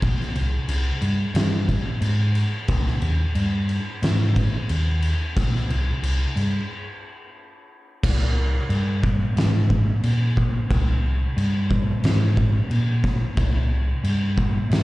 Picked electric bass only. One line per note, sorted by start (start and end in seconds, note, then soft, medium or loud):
0.03 0.24 A#1 medium
0.35 0.56 C2 medium
0.68 0.90 C2 medium
1.01 1.23 G2 medium
1.34 1.77 G2 medium
2.01 2.44 G#2 medium
2.68 2.90 C2 loud
3.02 3.23 D#2 medium
3.35 3.78 G2 loud
4.02 4.45 G#2 medium
4.70 5.12 D#2 medium
5.37 5.58 A#1 loud
5.69 5.91 C2 medium
6.02 6.24 C2 medium
6.36 6.57 G2 medium
8.03 8.58 C2 medium
8.69 9.24 G2 medium
9.36 9.91 G#2 medium
10.04 10.58 A#2 medium
10.71 11.25 C2 medium
11.37 11.91 G2 medium
12.03 12.58 G#2 medium
12.70 13.25 A#2 medium
13.37 13.92 C2 medium
14.03 14.58 G2 medium
14.70 14.83 G#2 medium